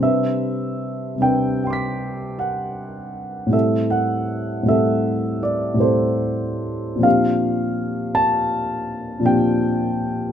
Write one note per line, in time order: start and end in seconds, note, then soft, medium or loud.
0.00 1.14 C3 soft
0.00 1.16 G3 soft
0.00 1.17 C4 soft
0.00 1.19 D4 soft
0.00 1.19 B4 soft
0.00 1.23 E5 medium
1.16 3.46 C3 soft
1.16 3.47 G3 soft
1.16 3.47 C4 soft
1.20 3.48 D4 soft
1.20 3.49 B4 soft
1.20 1.62 G5 soft
1.64 3.50 G5 soft
1.64 3.52 C6 soft
1.70 3.53 D6 soft
1.70 3.55 B6 soft
2.39 3.53 F#5 soft
3.47 4.61 A2 soft
3.47 4.62 G3 soft
3.47 4.64 C4 soft
3.51 4.65 E4 soft
3.51 4.67 A4 soft
3.51 3.92 E5 soft
3.90 4.69 F#5 medium
4.63 5.73 A2 soft
4.63 5.74 G3 soft
4.63 5.75 C4 soft
4.68 5.77 E4 soft
4.68 5.79 A4 soft
4.68 5.44 E5 medium
5.43 5.82 D5 soft
5.74 6.97 A2 soft
5.74 6.98 G3 soft
5.74 6.98 C4 soft
5.78 6.99 E4 soft
5.78 7.01 A4 soft
5.78 7.04 C5 soft
6.96 9.18 A#2 soft
6.96 9.19 F3 soft
6.96 9.20 C4 soft
7.02 9.21 D4 soft
7.02 9.22 G4 soft
7.02 8.16 F5 medium
8.15 9.25 A5 medium
9.20 10.30 A#2 soft
9.20 10.32 F3 soft
9.20 10.32 C4 soft
9.24 10.32 D4 soft
9.24 10.32 G4 soft
9.24 10.32 G5 medium